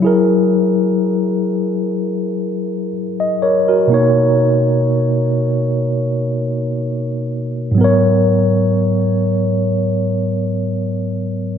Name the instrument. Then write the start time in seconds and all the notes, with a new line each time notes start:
tine electric piano
0.00 F#3 E4
0.05 G#4 A#4
3.20 D#5
3.42 A#4 C#5
3.68 F#4 A#4
3.88 B2 A#3
3.92 D#4 C#5
7.71 G#2 F#3
7.78 B3 A#4
7.84 C#5